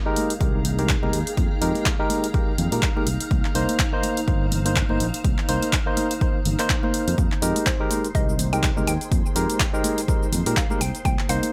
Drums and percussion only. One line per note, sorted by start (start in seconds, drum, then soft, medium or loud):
0.16 open hi-hat loud
0.16 high conga medium
0.30 closed hi-hat medium
0.41 kick loud
0.41 closed hi-hat soft
0.65 open hi-hat loud
0.65 high conga medium
0.65 low conga medium
0.79 closed hi-hat medium
0.89 kick loud
0.89 clap loud
0.89 closed hi-hat soft
1.03 high conga medium
1.13 open hi-hat loud
1.27 closed hi-hat medium
1.37 kick loud
1.37 closed hi-hat medium
1.37 high conga medium
1.62 open hi-hat loud
1.75 closed hi-hat medium
1.75 high conga medium
1.86 kick loud
1.86 clap loud
1.86 closed hi-hat soft
2.10 open hi-hat loud
2.10 high conga medium
2.24 closed hi-hat medium
2.34 kick loud
2.34 closed hi-hat soft
2.58 open hi-hat medium
2.58 high conga medium
2.58 low conga medium
2.72 closed hi-hat medium
2.83 kick loud
2.83 clap loud
2.83 closed hi-hat soft
2.97 high conga medium
3.07 open hi-hat loud
3.21 closed hi-hat medium
3.31 kick loud
3.31 closed hi-hat medium
3.31 high conga medium
3.45 clap soft
3.55 open hi-hat loud
3.69 closed hi-hat medium
3.69 high conga medium
3.79 kick loud
3.79 clap loud
3.79 closed hi-hat medium
4.03 open hi-hat loud
4.03 high conga medium
4.17 closed hi-hat medium
4.28 kick loud
4.28 closed hi-hat medium
4.51 open hi-hat medium
4.51 high conga medium
4.51 low conga medium
4.66 closed hi-hat medium
4.76 kick loud
4.76 clap loud
4.76 closed hi-hat soft
4.89 high conga medium
5.00 open hi-hat medium
5.14 closed hi-hat medium
5.25 kick loud
5.25 closed hi-hat medium
5.25 high conga medium
5.38 clap soft
5.49 open hi-hat loud
5.62 closed hi-hat medium
5.62 high conga medium
5.73 kick loud
5.73 clap loud
5.73 closed hi-hat medium
5.97 open hi-hat loud
5.97 high conga medium
6.11 closed hi-hat medium
6.21 kick loud
6.21 closed hi-hat medium
6.45 open hi-hat medium
6.45 high conga medium
6.45 low conga medium
6.59 clap soft
6.59 closed hi-hat medium
6.70 kick loud
6.70 clap loud
6.70 closed hi-hat soft
6.83 high conga medium
6.94 open hi-hat medium
7.08 closed hi-hat medium
7.18 kick loud
7.18 closed hi-hat medium
7.18 high conga medium
7.18 cabasa soft
7.32 clap soft
7.42 open hi-hat loud
7.42 cabasa medium
7.56 closed hi-hat medium
7.56 high conga medium
7.56 cabasa soft
7.66 kick loud
7.66 clap loud
7.66 closed hi-hat medium
7.66 cabasa soft
7.90 open hi-hat loud
7.90 high conga medium
7.90 cabasa medium
8.04 closed hi-hat medium
8.04 cabasa soft
8.15 kick loud
8.15 closed hi-hat medium
8.15 cabasa soft
8.29 cabasa soft
8.39 open hi-hat loud
8.39 high conga medium
8.39 low conga medium
8.39 cabasa medium
8.53 closed hi-hat medium
8.53 cabasa soft
8.63 kick loud
8.63 clap loud
8.63 closed hi-hat medium
8.63 cabasa soft
8.77 high conga medium
8.77 cabasa soft
8.87 open hi-hat loud
8.87 cabasa medium
9.01 closed hi-hat medium
9.01 cabasa soft
9.11 kick loud
9.11 closed hi-hat medium
9.11 high conga medium
9.11 cabasa soft
9.26 cabasa soft
9.36 open hi-hat loud
9.36 cabasa medium
9.50 closed hi-hat medium
9.50 high conga medium
9.50 cabasa soft
9.60 kick loud
9.60 clap loud
9.60 closed hi-hat medium
9.60 cabasa soft
9.74 cabasa soft
9.84 open hi-hat loud
9.84 high conga medium
9.84 cabasa medium
9.98 closed hi-hat medium
9.98 cabasa soft
10.08 kick loud
10.08 closed hi-hat medium
10.08 cabasa soft
10.23 cabasa soft
10.32 open hi-hat loud
10.32 high conga medium
10.32 low conga medium
10.32 cabasa medium
10.46 closed hi-hat medium
10.46 cabasa soft
10.57 kick loud
10.57 clap loud
10.57 closed hi-hat soft
10.57 cabasa soft
10.70 high conga medium
10.70 cabasa soft
10.81 open hi-hat loud
10.81 cabasa medium
10.95 closed hi-hat medium
10.95 cabasa soft
11.05 kick loud
11.05 closed hi-hat medium
11.05 high conga loud
11.05 cabasa soft
11.19 clap soft
11.29 open hi-hat loud
11.29 cabasa medium
11.43 closed hi-hat medium
11.43 high conga medium
11.43 cabasa soft